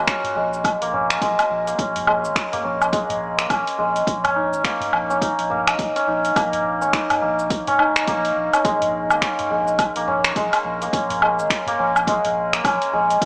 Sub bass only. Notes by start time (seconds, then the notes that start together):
0.35 A#1
0.81 A#1
1.22 A#1
1.50 A#1
1.79 A#1
2.24 G#1
2.64 A#1
3.09 A#1
3.50 A#1
3.78 A#1
4.07 A#1
4.52 G#1
4.92 A#1
5.38 A#1
5.79 A#1
6.07 A#1
6.36 A#1
6.82 G#1
7.22 A#1
7.67 F1
8.08 A#1
8.36 A#1
8.65 A#1
9.10 G#1
9.50 A#1
9.96 A#1
10.36 A#1
10.64 A#1
10.93 A#1
11.39 G#1
11.79 A#1
12.25 A#1
12.65 A#1
12.93 A#1
13.21 A#1